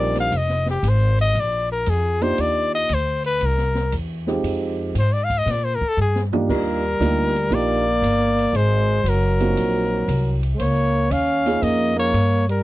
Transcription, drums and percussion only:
0.15 snare, ride
0.32 ride
0.49 snare
0.66 snare
0.83 hi-hat pedal, ride
1.19 ride
1.35 ride
1.86 hi-hat pedal, ride
2.21 ride
2.38 ride
2.89 hi-hat pedal, ride
3.24 ride
3.41 ride
3.58 snare
3.75 snare
3.92 hi-hat pedal, ride
4.27 snare
4.44 ride
4.95 hi-hat pedal, ride
5.30 kick, ride
5.47 snare, ride
5.81 kick
5.99 hi-hat pedal
6.16 snare
6.33 floor tom
6.50 kick, crash
7.02 hi-hat pedal, ride
7.36 ride
7.52 ride
8.04 hi-hat pedal, ride
8.39 ride
8.55 ride
9.06 hi-hat pedal, ride
9.40 ride
9.57 ride
10.08 hi-hat pedal, ride
10.43 ride
10.59 ride
11.11 hi-hat pedal, ride
11.46 snare, ride
11.63 ride
12.14 hi-hat pedal, ride
12.49 ride

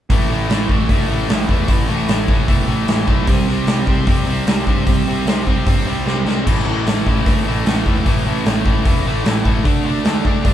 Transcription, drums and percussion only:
0.10 kick, open hi-hat
0.50 snare, open hi-hat
0.69 kick
0.89 kick, open hi-hat
1.29 snare, open hi-hat
1.49 kick
1.68 kick, open hi-hat
2.09 snare, open hi-hat
2.28 kick
2.48 kick, open hi-hat
2.88 snare, open hi-hat
3.08 kick
3.27 kick, open hi-hat
3.67 snare, open hi-hat
3.87 kick
4.07 kick, open hi-hat
4.47 snare, open hi-hat
4.67 kick
4.87 kick, open hi-hat
5.27 snare, open hi-hat
5.47 kick
5.67 kick, open hi-hat
6.07 snare
6.28 snare
6.47 kick, crash
6.87 snare, open hi-hat
7.07 kick
7.26 kick, open hi-hat
7.66 snare, open hi-hat
7.86 kick
8.06 kick, open hi-hat
8.46 snare, open hi-hat
8.66 kick
8.85 kick, open hi-hat
9.25 snare, open hi-hat
9.45 kick
9.65 kick, open hi-hat
10.05 snare, open hi-hat
10.25 kick
10.45 kick, open hi-hat

